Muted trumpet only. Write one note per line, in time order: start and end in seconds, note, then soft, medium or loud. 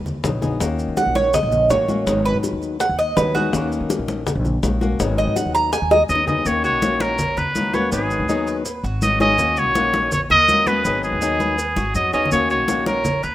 6.09 6.26 D#5 loud
6.28 6.48 D#5 medium
6.47 6.64 C#5 loud
6.64 7.03 C#5 loud
7.01 7.39 A#4 loud
7.38 7.76 B4 loud
7.74 7.92 C#5 medium
7.93 8.62 G#4 medium
9.03 9.19 D#5 loud
9.21 9.60 D#5 loud
9.58 10.12 C#5 loud
10.13 10.21 C#5 loud
10.31 10.69 D#5 loud
10.67 11.03 B4 loud
11.04 11.91 G#4 medium
11.95 12.12 D#5 loud
12.13 12.30 D#5 loud
12.32 12.49 C#5 loud
12.51 12.84 C#5 medium
12.87 13.25 A#4 medium
13.24 13.35 B4 loud